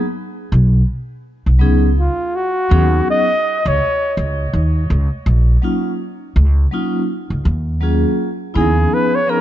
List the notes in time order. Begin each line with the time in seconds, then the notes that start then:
0.52 B1
1.46 B1
1.59 C#2 F#3 B3 C#4 D#4 G#4
1.99 F4
2.35 F#4
2.69 D#2 F#3 B3 C#4 D#4 G#4
3.10 D#5
3.66 C#2 C#5
4.17 C#2
4.53 D#2
4.90 C#2
5.26 A#1
5.62 F#3 A#3 C#4 D#4 F4
6.36 C#2
6.71 F#3 A#3 C#4 D#4 F4
7.30 C#2
7.45 D#2
7.81 F#3 A#3 C#4 F4 G#4
8.54 D#2 B3 C#4 D#4 E4 G#4
8.61 F3
8.94 B4
9.15 C#5
9.27 F3 B3 C#4 D#4 G#4 A#4